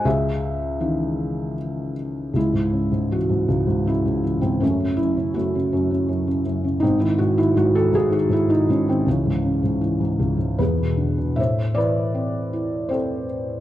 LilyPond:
<<
  \new Staff \with { instrumentName = "Felt piano" } { \time 3/4 \key cis \minor \tempo 4 = 80 << { e''2~ e''8 r8 | e'4 fis'4 e'8. bis16 | cis'8 e'8 fis'4. r8 | dis'16 e'16 fis'16 e'16 fis'16 a'16 gis'16 fis'16 e'16 dis'16 cis'16 bis16 |
cis'2 b'4 | \key a \minor e''8 d''4. c''4 | } \\ { gis'2~ gis'8 r8 | gis4. r4. | a4 a4. r8 | bis4. r4. |
e2 gis'4 | c''8 b'4. a'4 | } >> }
  \new Staff \with { instrumentName = "Felt piano" } { \clef bass \time 3/4 \key cis \minor cis,4 <dis e cis'>4 r4 | cis,16 gis,16 cis16 gis,16 e16 gis,16 cis,16 gis,16 cis16 gis,16 e16 gis,16 | fis,16 cis16 fis,16 cis16 fis,16 cis16 fis,16 cis16 fis,16 cis16 fis,16 cis16 | gis,16 dis16 gis,16 dis16 gis,16 dis16 gis,16 dis16 gis,16 dis16 gis,16 dis16 |
cis,16 gis,16 cis16 gis,16 e16 gis,16 cis,16 gis,16 e,16 b,16 d16 b,16 | \key a \minor a,8 e8 c'8 e'8 c'4 | }
>>